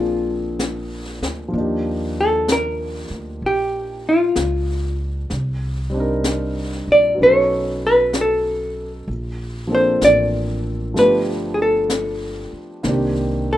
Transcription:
0.00 1.18 A#1 medium
0.00 1.47 F3 soft
0.00 1.50 A#3 soft
0.00 1.54 C4 soft
0.00 1.53 D4 soft
0.00 1.20 F4 medium
0.00 1.54 G#4 soft
0.59 brush sweep soft
0.59 snare soft
0.59 hi-hat pedal soft
1.21 1.51 D2 medium
1.21 snare soft
1.48 5.28 F3 soft
1.48 5.30 A#3 soft
1.53 3.06 D#2 medium
1.53 5.31 D4 soft
1.53 5.32 D#4 soft
1.53 brush sweep soft
1.60 5.34 G4 soft
2.21 2.51 A4 medium
2.48 3.46 A#4 medium
2.48 brush sweep soft
2.48 snare soft
2.48 hi-hat pedal soft
3.10 3.40 D2 medium
3.41 4.32 A#1 medium
3.41 brush sweep soft
3.46 4.08 G4 medium
4.09 4.97 F4 medium
4.36 5.27 C#2 medium
4.36 brush sweep soft
4.36 snare soft
4.36 hi-hat pedal soft
5.30 6.83 C2 medium
5.30 brush sweep soft
5.30 snare soft
5.90 7.18 G3 soft
5.90 7.19 C4 soft
5.94 7.20 D4 soft
5.94 7.21 D#4 soft
6.00 7.23 A#4 soft
6.24 brush sweep soft
6.24 snare soft
6.24 hi-hat pedal soft
6.87 7.17 A#1 medium
6.92 7.22 D5 medium
7.15 9.06 F#3 soft
7.15 9.07 B3 soft
7.19 9.04 B1 medium
7.19 9.09 C#4 soft
7.19 brush sweep soft
7.23 9.10 D#4 soft
7.23 9.11 A4 soft
7.23 7.85 C#5 medium
7.87 8.14 B4 medium
8.13 brush sweep soft
8.13 snare soft
8.13 hi-hat pedal soft
8.21 8.92 A4 medium
9.08 9.98 A#1 medium
9.08 brush sweep soft
9.67 10.93 F3 soft
9.67 10.96 A#3 soft
9.67 10.96 C4 soft
9.71 10.96 D4 soft
9.71 10.98 A4 soft
9.71 10.04 C5 medium
10.01 10.92 A1 medium
10.01 10.98 D5 medium
10.01 brush sweep soft
10.01 snare soft
10.01 hi-hat pedal soft
10.94 12.49 G1 medium
10.94 12.84 F3 soft
10.94 12.85 A3 soft
10.94 12.85 B3 soft
10.94 12.85 D4 soft
10.94 brush sweep soft
10.94 snare soft
10.99 12.87 G4 soft
10.99 11.52 B4 medium
11.54 11.61 G#4 soft
11.62 12.51 A4 medium
11.90 brush sweep soft
11.90 snare soft
11.90 hi-hat pedal soft
12.53 muted upright bass stroke soft
12.83 13.57 C2 medium
12.83 13.57 D#3 soft
12.83 13.57 A#3 soft
12.83 13.57 C4 soft
12.83 13.57 D4 soft
12.83 brush sweep soft
12.83 snare soft
12.89 13.57 G4 soft
13.53 13.57 A4 medium

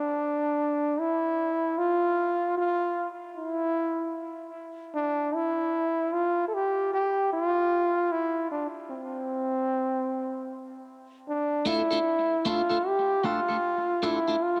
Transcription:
0.00 1.01 D4 loud
1.00 1.80 E4 loud
1.78 2.56 F4 loud
2.58 3.08 F4 loud
3.37 4.50 E4 loud
4.95 5.36 D4 loud
5.35 6.14 E4 loud
6.13 6.46 F4 loud
6.48 6.55 A4 medium
6.54 6.92 G4 loud
6.93 7.29 G4 loud
7.33 8.13 F4 loud
8.12 8.50 E4 loud
8.51 8.67 D4 medium
8.91 10.83 C4 medium
11.29 11.69 D4 loud
11.65 11.81 A3 medium
11.65 11.81 D4 loud
11.65 12.48 E4 loud
11.65 11.82 F4 loud
11.65 11.82 A4 medium
11.91 11.99 A3 soft
11.91 11.98 D4 medium
11.91 11.98 F4 medium
11.91 11.98 A4 medium
12.45 12.60 A3 medium
12.45 12.61 D4 medium
12.45 12.61 F4 medium
12.45 12.88 F4 medium
12.45 12.61 A4 medium
12.70 12.77 A3 medium
12.70 12.77 D4 medium
12.70 12.77 F4 medium
12.70 12.77 A4 medium
12.87 13.27 G4 loud
13.24 13.39 A3 medium
13.24 13.40 D4 loud
13.24 13.40 F4 loud
13.24 14.06 F4 loud
13.24 13.40 A4 loud
13.49 13.56 A3 medium
13.49 13.56 D4 soft
13.49 13.56 F4 medium
13.49 13.56 A4 medium
14.03 14.18 A3 medium
14.03 14.18 D4 loud
14.03 14.45 E4 loud
14.03 14.19 F4 loud
14.03 14.19 A4 loud
14.28 14.35 A3 soft
14.28 14.35 D4 soft
14.28 14.35 F4 medium
14.28 14.35 A4 medium
14.43 14.60 F4 loud

